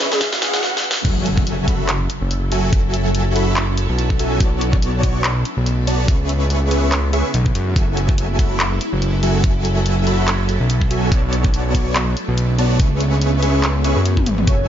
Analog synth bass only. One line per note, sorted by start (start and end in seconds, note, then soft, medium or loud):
1.05 2.09 F#1 loud
2.21 3.88 F#1 medium
3.89 4.39 B1 medium
4.40 5.44 B1 loud
5.57 6.10 B1 medium
6.08 7.23 C#2 medium
7.34 7.54 B1 loud
7.55 7.75 F#2 loud
7.76 8.80 F#1 loud
8.93 10.59 F#1 medium
10.60 11.11 B1 medium
11.12 12.15 B1 loud
12.28 12.81 B1 medium
12.80 13.95 C#2 medium
13.96 14.26 F#2 medium
14.26 14.46 G#1 loud
14.47 14.68 F#1 loud